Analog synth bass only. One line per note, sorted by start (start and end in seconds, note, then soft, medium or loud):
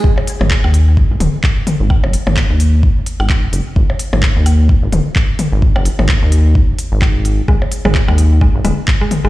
0.04 0.12 G#1 loud
0.41 0.54 G#1 medium
0.64 1.02 D#2 medium
1.11 1.17 G#1 medium
1.20 1.29 D#1 loud
1.80 1.93 G#1 loud
2.04 2.16 F#1 loud
2.27 2.40 G#1 medium
2.50 2.88 D#2 medium
3.20 3.47 G#1 medium
3.53 3.61 F#1 medium
3.76 3.85 G#1 loud
4.13 4.26 G#1 medium
4.36 4.74 D#2 medium
4.83 4.89 G#1 medium
4.92 5.01 D#1 loud
5.53 5.65 G#1 loud
5.76 5.89 F#1 loud
5.99 6.12 G#1 medium
6.22 6.60 D#2 medium
6.92 7.42 G#1 medium
7.48 7.57 G#1 loud
7.85 7.98 G#1 medium
8.08 8.46 D#2 medium
8.55 8.61 G#1 medium
8.65 8.73 D#1 loud
9.25 9.29 G#1 loud